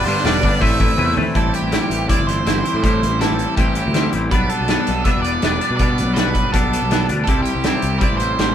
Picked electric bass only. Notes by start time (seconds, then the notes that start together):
0.06 G2
0.24 E1
0.44 G1
0.62 A1
0.80 A1
0.98 E2
1.36 A1
1.63 A1
1.90 A1
2.18 G1
2.46 G1
2.74 A2
3.03 A1
3.30 A1
3.58 A1
3.87 D2
4.14 A1
4.32 B1
4.61 B1
4.88 B1
5.15 E1
5.43 E1
5.71 B2
6.00 B1
6.26 B1
6.54 B1
6.83 B1
7.09 D2
7.28 C2
7.55 C2
7.83 C2
8.11 A1
8.39 A1